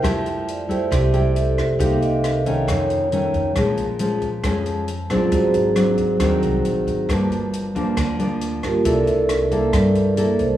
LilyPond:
<<
  \new Staff \with { instrumentName = "Vibraphone" } { \time 4/4 \key f \major \tempo 4 = 136 r4 d''8 c''8 g'4 a'4 | f''8 ees''8 bes'4 cis''4. r8 | r2. r8 <aes des' f' aes'>8 | <c' ges' aes' c''>4 r2. |
r2. r8 <bes f' g' bes'>8 | <d' a' bes' d''>4 r4 d''4. c''8 | }
  \new Staff \with { instrumentName = "Nylon-string guitar" } { \time 4/4 \key f \major << { <a e' g'>4. <a e' g'>4 <a e' g'>4. | <bes ees' g'>4. <ees a des'>4. <ees a cis'>4 | <f aes des'>8 r8 <f aes des'>8 r8 <f aes des'>4 r8 <ges c' d'>8~ | <ges c' d'>4 <ges c' d'>4 <ges c' d'>2 |
<f bes d'>4. <f bes d'>4 <f bes d'>4. | <bes e' a'>4. <bes e' a'>4. <bes e' a'>8 r8 | } \\ { f2 c2 | c2 f,2 | bes,2 f,2 | aes,2 ees2 |
g,2 d2 | c2 g,2 | } >> }
  \new Staff \with { instrumentName = "Upright bass" } { \clef bass \time 4/4 \key f \major f,8 f,4. c,4. f,8 | c,8 c,4. f,4. f,8 | bes,,8 bes,,4. f,4. bes,,8 | aes,,8 aes,,4. ees,8 c,8 bes,,8 aes,,8 |
g,,8 g,,4. d,4. g,,8 | c,8 r4. g,4. c,8 | }
  \new DrumStaff \with { instrumentName = "Drums" } \drummode { \time 4/4 <hh bd ss>8 hh8 hh8 <hh bd>8 <hh bd ss>8 hh8 hh8 <hh bd ss>8 | <hh bd>8 hh8 <hh ss>8 <hh bd>8 <hh bd ss>8 hh8 hh8 <hh bd>8 | <hh bd ss>8 hh8 hh8 <hh bd>8 <hh bd ss>8 hh8 hh8 <hh bd ss>8 | <hh bd>8 hh8 <hh ss>8 <hh bd>8 <hh bd ss>8 hh8 hh8 <hh bd>8 |
<hh bd ss>8 hh8 hh8 <hh bd>8 <hh bd ss>8 hh8 hh8 <hh bd ss>8 | <hh bd>8 hh8 <hh ss>8 <hh bd>8 <hh bd ss>8 hh8 hh8 <hh bd>8 | }
>>